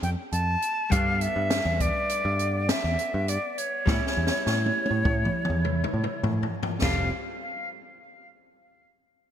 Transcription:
Already playing: hollow-body jazz guitar G3 A3 C4 F4
0.03 picked electric bass F2, flute G5, closed hi-hat
0.32 picked electric bass F2, flute A5, closed hi-hat
0.62 closed hi-hat
0.90 picked electric bass G2, hollow-body jazz guitar G3 A3 B3 D4, flute F5, kick, closed hi-hat
1.21 flute E5, closed hi-hat
1.36 picked electric bass G2
1.50 snare, closed hi-hat
1.65 picked electric bass E2
1.80 flute D5, kick, closed hi-hat
2.09 closed hi-hat
2.25 picked electric bass G2
2.39 closed hi-hat
2.69 flute E5, snare, closed hi-hat
2.84 picked electric bass E2
2.99 closed hi-hat
3.14 picked electric bass G2
3.28 flute D5, closed hi-hat
3.58 flute C#5, closed hi-hat
3.86 picked electric bass A2, hollow-body jazz guitar G3 B3 C#4 E4, kick, snare
4.07 snare
4.17 picked electric bass E2
4.27 snare
4.46 picked electric bass A2, snare
4.66 high tom
4.86 high tom
4.91 picked electric bass A2
5.05 picked electric bass A2, kick, high tom
5.25 mid tom
5.45 mid tom
5.50 picked electric bass E2
5.65 mid tom
5.84 mid tom
5.94 picked electric bass A2
6.04 mid tom
6.23 picked electric bass A2, floor tom
6.43 floor tom
6.63 floor tom
6.82 picked electric bass F1, hollow-body jazz guitar G3 A3 C4 F4, flute F5, kick, snare, crash

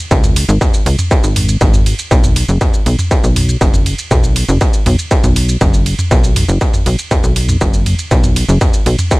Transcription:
0.11 analog synth bass C#2, kick, ride, shaker
0.24 mid tom, shaker
0.36 open hi-hat, ride
0.49 analog synth bass G#1, shaker
0.61 kick, mid tom, ride, shaker
0.74 shaker
0.86 analog synth bass C#2, open hi-hat, ride
0.99 mid tom, shaker
1.11 kick, ride, shaker
1.24 analog synth bass G#1, shaker
1.36 mid tom, open hi-hat, ride
1.49 shaker
1.61 analog synth bass G#1, kick, ride, shaker
1.74 mid tom, shaker
1.86 open hi-hat, ride
1.99 shaker
2.11 analog synth bass B1, kick, ride, shaker
2.24 mid tom, shaker
2.36 open hi-hat, ride
2.49 analog synth bass F#1, shaker
2.61 kick, mid tom, ride, shaker
2.74 shaker
2.86 analog synth bass B1, open hi-hat, ride
2.99 mid tom, shaker
3.11 kick, ride, shaker
3.24 analog synth bass B1, shaker
3.36 mid tom, open hi-hat, ride
3.49 shaker
3.61 analog synth bass F#1, kick, ride, shaker
3.74 mid tom, shaker
3.86 open hi-hat, ride
3.99 shaker
4.11 analog synth bass B1, kick, mid tom, ride, shaker
4.24 shaker
4.36 open hi-hat, ride
4.49 analog synth bass F#1, mid tom, shaker
4.61 kick, ride, shaker
4.74 shaker
4.86 analog synth bass B1, mid tom, open hi-hat, ride
4.99 shaker
5.11 kick, ride, shaker
5.24 analog synth bass B1, mid tom, shaker
5.36 open hi-hat, ride
5.49 shaker
5.61 analog synth bass F#1, kick, mid tom, ride, shaker
5.74 shaker
5.86 open hi-hat, ride
5.99 mid tom, shaker
6.11 analog synth bass B1, kick, ride, shaker
6.24 shaker
6.36 mid tom, open hi-hat, ride
6.49 analog synth bass F#1, shaker
6.61 kick, ride, shaker
6.74 mid tom, shaker
6.86 analog synth bass B1, open hi-hat, ride
6.99 shaker
7.11 kick, mid tom, ride, shaker
7.24 analog synth bass B1, shaker
7.36 open hi-hat, ride
7.49 mid tom, shaker
7.61 analog synth bass F#1, kick, ride, shaker
7.74 shaker
7.86 mid tom, open hi-hat, ride
7.99 shaker
8.11 analog synth bass B1, kick, ride, shaker
8.24 mid tom, shaker
8.36 open hi-hat, ride
8.49 analog synth bass F#1, shaker
8.61 kick, mid tom, ride, shaker
8.74 shaker
8.86 analog synth bass B1, open hi-hat, ride
8.99 mid tom, shaker
9.11 kick, ride, shaker

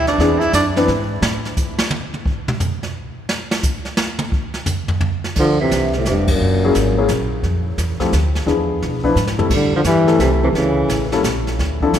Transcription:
Already playing: upright bass D2
0.07 tenor saxophone D4, snare
0.18 upright bass E2, grand piano E3 B3 C4 D4 G#4, brush sweep, snare
0.40 tenor saxophone E4, snare
0.53 upright bass F#2, tenor saxophone D4, snare, hi-hat pedal
0.76 grand piano E3 B3 C4 D4 B4, snare
0.88 upright bass G#2, snare
1.22 upright bass A2, snare
1.45 snare
1.57 kick, hi-hat pedal
1.79 snare
1.90 high tom
2.14 high tom
2.26 kick
2.48 mid tom
2.60 floor tom, hi-hat pedal
2.83 snare
3.29 snare
3.51 snare
3.63 kick, hi-hat pedal
3.85 snare
3.97 snare
4.19 high tom
4.32 kick
4.54 snare
4.66 floor tom, hi-hat pedal
4.88 floor tom
5.01 floor tom
5.24 snare
5.36 upright bass D2, trombone D3, tenor saxophone F3, brush sweep, kick, snare, crash
5.60 trombone C3, tenor saxophone E3
5.71 upright bass C2, snare, hi-hat pedal
5.93 tenor saxophone C3, snare
5.98 trombone A2
6.05 upright bass F1, trombone G2, tenor saxophone C3, snare, hi-hat pedal
6.28 tenor saxophone A#2, kick, ride
6.33 trombone F#2
6.40 upright bass F#1, brush sweep
6.64 grand piano F#3 A#3 C#4 E4 G#4
6.75 upright bass G#1, snare, hi-hat pedal
6.98 grand piano F#3 A#3 C#4 E4 G#4
7.08 upright bass A#1, snare, hi-hat pedal
7.43 upright bass F2, brush sweep, snare
7.78 upright bass E2, snare, hi-hat pedal
8.00 grand piano F3 A3 C4 E4 G4, kick, snare
8.13 upright bass D2, snare, hi-hat pedal
8.35 snare
8.46 upright bass E2, grand piano F3 B3 D4 E4 G#4, brush sweep, snare
8.82 upright bass B2, snare
9.04 grand piano F3 B3 D4 E4 B4, kick
9.16 upright bass G#2, snare, hi-hat pedal
9.27 snare
9.39 grand piano G3 A3 C4 E4 A4, floor tom
9.50 upright bass A2, tenor saxophone G3, brush sweep, kick, snare, crash
9.56 trombone D3
9.72 tenor saxophone F3, muted upright bass stroke
9.77 trombone D3
9.84 upright bass G2, trombone E3, tenor saxophone G3, snare, hi-hat pedal
10.08 grand piano G3 A3 C4 E4 A4, snare
10.18 upright bass C2, trombone C3, tenor saxophone E3, snare, hi-hat pedal
10.43 trombone C3, tenor saxophone E3
10.53 upright bass C#2, trombone C#3, tenor saxophone E3, brush sweep, snare
10.88 upright bass A1, snare, hi-hat pedal
11.12 grand piano G3 A#3 C#4 E4 A4, snare
11.23 upright bass A#1, snare, hi-hat pedal
11.47 snare
11.59 upright bass D2, brush sweep, snare
11.81 grand piano F3 C4 D4 E4 A4, kick
11.93 upright bass C2, snare, hi-hat pedal

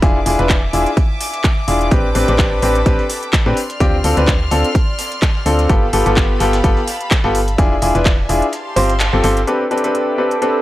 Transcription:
0.02 fm bass E1, grand piano D4 E4 F4 G#4, violin section E5 G#5 D6, kick, closed hi-hat
0.26 fm bass E1, grand piano D4 E4 F4 G#4, closed hi-hat, open hi-hat
0.39 fm bass E1, grand piano D4 E4 F4 B4, snare, closed hi-hat
0.49 kick, snare, clap, closed hi-hat
0.73 fm bass E1, grand piano D4 E4 F4 G#4, closed hi-hat, open hi-hat
0.86 closed hi-hat
0.97 kick, closed hi-hat
1.21 snare, closed hi-hat, open hi-hat
1.33 closed hi-hat
1.44 kick, clap, closed hi-hat
1.68 fm bass E1, grand piano D4 E4 F4 G#4, closed hi-hat, open hi-hat
1.81 snare, closed hi-hat
1.91 fm bass A1, grand piano C4 D4 G4 B4, violin section A4 G5 A5 B5, kick, closed hi-hat
2.15 fm bass A1, grand piano C4 D4 G4 B4, closed hi-hat, open hi-hat
2.28 fm bass A1, grand piano C4 D4 G4 B4, snare, closed hi-hat
2.39 kick, snare, clap, closed hi-hat
2.62 fm bass A1, grand piano C4 D4 G4 B4, closed hi-hat, open hi-hat
2.75 closed hi-hat
2.86 fm bass A1, grand piano C4 D4 G4 B4, kick, closed hi-hat
2.99 closed hi-hat
3.10 snare, closed hi-hat, open hi-hat
3.23 closed hi-hat
3.33 kick, snare, clap, closed hi-hat
3.46 fm bass A2, grand piano C4 D4 G4 B4, snare
3.57 violin section D5 C6 F6, closed hi-hat, open hi-hat
3.70 closed hi-hat
3.80 fm bass D2, grand piano C4 D4 F4 G4, kick, closed hi-hat
4.04 fm bass D2, grand piano C4 D4 F4 A4, closed hi-hat, open hi-hat
4.17 fm bass D2, grand piano C4 D4 F4 B4, snare, closed hi-hat
4.28 kick, snare, clap, closed hi-hat
4.51 fm bass D2, grand piano C4 D4 F4 A4, closed hi-hat, open hi-hat
4.64 closed hi-hat
4.75 kick, closed hi-hat
4.99 snare, closed hi-hat, open hi-hat
5.12 closed hi-hat
5.22 kick, snare, clap, closed hi-hat
5.35 snare
5.46 fm bass D2, grand piano C4 D4 F4 A4, closed hi-hat, open hi-hat
5.59 snare, closed hi-hat
5.69 fm bass G1, grand piano B3 F4 G4 A4, violin section G4 F5 A5 B5, kick, closed hi-hat
5.93 fm bass G1, grand piano B3 F4 G4 A4, closed hi-hat, open hi-hat
6.06 fm bass G1, grand piano B3 F4 G4 A4, snare, closed hi-hat
6.17 kick, snare, clap, closed hi-hat
6.40 fm bass G1, grand piano B3 F4 G4 A4, snare, closed hi-hat, open hi-hat
6.53 snare, closed hi-hat
6.64 fm bass G1, grand piano B3 F4 G4 A4, kick, closed hi-hat
6.77 closed hi-hat
6.87 snare, closed hi-hat, open hi-hat
7.00 closed hi-hat
7.11 kick, snare, clap, closed hi-hat
7.24 fm bass G1, grand piano B3 F4 G4 A4, snare
7.35 closed hi-hat, open hi-hat
7.48 closed hi-hat
7.58 fm bass E1, grand piano D4 E4 F4 G#4, violin section D5 E5 G#5, kick, closed hi-hat
7.82 fm bass E1, grand piano D4 E4 F4 G#4, closed hi-hat, open hi-hat
7.95 fm bass E1, grand piano D4 E4 F4 B4, snare, closed hi-hat
8.05 kick, snare, clap, closed hi-hat
8.29 fm bass E1, grand piano D4 E4 F4 G#4, closed hi-hat, open hi-hat
8.42 closed hi-hat
8.53 violin section G4 F5 A5 C6, closed hi-hat
8.76 fm bass G1, grand piano C4 F4 G4 C5, snare, closed hi-hat, open hi-hat
8.89 closed hi-hat
9.00 snare, clap, closed hi-hat
9.13 fm bass G1, grand piano C4 F4 G4 A4, snare
9.24 fm bass G1, grand piano C4 F4 G4 A4, closed hi-hat, open hi-hat
9.37 snare, closed hi-hat
9.47 grand piano C4 D4 G4 A4 B4, ambient pad A4, violin section A4 E5 G5 A5 B5 D6, closed hi-hat
9.53 ambient pad E6
9.71 grand piano C4 D4 G4 A4 B4, closed hi-hat
9.78 closed hi-hat
9.84 grand piano C4 D4 G4 A4 B4, closed hi-hat
9.95 closed hi-hat
10.18 grand piano C4 D4 G4 A4 B4
10.31 closed hi-hat
10.42 grand piano C4 D4 G4 A4 B4, closed hi-hat

